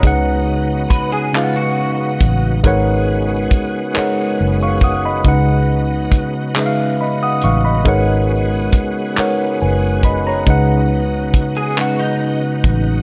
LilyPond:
<<
  \new Staff \with { instrumentName = "Tine electric piano" } { \time 6/8 \key cis \dorian \tempo 4. = 46 << { <cis'' ais''>16 r2 r8. | r2 r16 <eis'' cis'''>16 <fis'' dis'''>16 <dis'' b''>16~ | <dis'' b''>16 r4. r16 <dis'' b''>16 <fis'' dis'''>16 <eis'' cis'''>16 <dis'' b''>16~ | <dis'' b''>16 r4. r16 <b' gis''>8 <dis'' b''>16 <cis'' ais''>16~ |
<cis'' ais''>16 r2 r8. | } \\ { <cis gis dis' b' fis''>4 r8 <cis gis dis' b' eis'' fis''>4 r8 | <gis dis' ais' b' cis'' fis''>4 r8 <gis dis' ais' b' cis'' fis''>4 r8 | <cis gis dis' b' fis''>4 r8 <cis gis dis' b' e'' eis''>4 r8 | <gis dis' ais' b' cis'' fis''>4 r8 <gis dis' ais' b' cis'' fis''>4 r8 |
<cis gis dis' b' fis''>4 r8 <cis gis dis' b' fis''>4 r8 | } >> }
  \new Staff \with { instrumentName = "Clean electric guitar" } { \time 6/8 \key cis \dorian r4 b'16 gis'16 eis'16 fis'4~ fis'16 | r2. | r2. | r2. |
r4 r16 gis'16 fis'16 dis'4~ dis'16 | }
  \new Staff \with { instrumentName = "Tonewheel organ" } { \time 6/8 \key cis \dorian fis'2. | fis'2.~ | fis'2. | fis'2.~ |
fis'2. | }
  \new Staff \with { instrumentName = "Tonewheel organ" } { \time 6/8 \key cis \dorian << { <b dis'>2. | <gis b>2. | dis'2. | gis2. |
dis'2. | } \\ { cis2. | cis2.~ | cis2.~ | cis2.~ |
cis2. | } >> }
  \new Staff \with { instrumentName = "Fingered electric bass" } { \clef bass \time 6/8 \key cis \dorian cis,4 r4. a,,8 | gis,,4 r4 fis,,4 | cis,4 r4. a,,8 | gis,,4 r4 fis,,4 |
cis,4 r4. a,,8 | }
  \new DrumStaff \with { instrumentName = "Drums" } \drummode { \time 6/8 <hh bd>4 <hh bd>8 <hc hh>4 <hh bd>8 | <hh bd>4 <hh bd>8 <hc hh>4 <hh bd>8 | <hh bd>4 <hh bd>8 <hc hh>4 hh8 | <hh bd>4 <hh bd>8 <hc hh>4 <hh bd>8 |
<hh bd>4 <hh bd>8 <hc hh>4 <hh bd>8 | }
>>